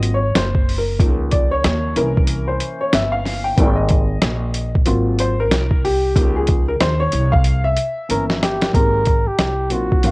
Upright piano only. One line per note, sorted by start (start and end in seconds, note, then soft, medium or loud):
0.00 0.16 F#3 medium
0.00 0.16 A#3 medium
0.00 0.16 C4 medium
0.00 0.17 F4 medium
0.00 0.11 D#5 loud
0.14 0.36 C#5 medium
0.36 0.76 C5 medium
0.78 1.08 A#4 medium
0.99 1.92 F3 medium
0.99 1.93 A#3 medium
0.99 1.93 D#4 medium
1.31 1.52 D5 medium
1.51 1.93 C#5 medium
1.96 3.54 E3 medium
1.96 3.54 A#3 soft
1.96 3.54 C#4 medium
1.96 2.50 A#4 loud
2.48 2.78 C5 medium
2.81 2.93 C#5 medium
2.94 3.14 E5 loud
3.12 3.46 F5 medium
3.44 3.75 G5 medium
3.56 4.03 G3 medium
3.56 4.03 A#3 medium
3.56 4.03 C4 medium
3.76 4.69 D#5 medium
4.85 5.32 F#3 medium
4.85 5.32 A#3 medium
4.85 5.32 C4 medium
4.85 5.32 F4 medium
5.20 5.40 C5 medium
5.40 5.81 A#4 loud
5.85 6.37 G4 loud
6.15 6.61 F3 medium
6.15 6.61 A#3 medium
6.15 6.62 D#4 medium
6.36 6.69 G#4 medium
6.68 6.73 A#4 medium
6.81 6.99 C5 loud
7.00 7.30 C#5 loud
7.32 7.65 F5 loud
7.64 8.57 E5 loud
8.09 8.71 E3 medium
8.09 8.71 A#3 medium
8.09 8.71 C#4 medium
8.73 8.98 G#3 medium
8.73 8.99 A#3 medium
8.73 8.99 C4 medium
8.73 8.99 D#4 medium
8.73 9.00 G4 medium
9.70 9.95 F#3 medium
9.70 9.95 A#3 medium
9.70 9.96 C4 medium
9.70 9.96 D#4 medium
9.74 9.97 F4 medium
10.02 10.11 F#3 medium
10.02 10.11 A#3 medium
10.02 10.11 C4 medium
10.02 10.11 D#4 medium
10.02 10.11 F5 medium